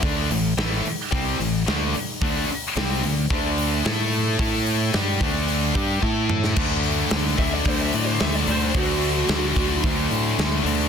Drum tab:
CC |----------------|----------------|----------------|x---------------|
HH |o-o-o-o-o-o-o-o-|o-o-o-o-o-o-o-o-|o-o-o-o-o-------|--o-o-o-o-o-o-o-|
SD |----o-------o---|----o-------o---|----o----------o|----o-------o---|
T2 |----------------|----------------|--------------o-|----------------|
BD |o-------o-------|o-------o-------|o-----o---o-o---|o-----o-o-------|

CC |----------------|
HH |o-o-o-o-o-o-o-o-|
SD |----o-------o---|
T2 |----------------|
BD |o-----o-o-------|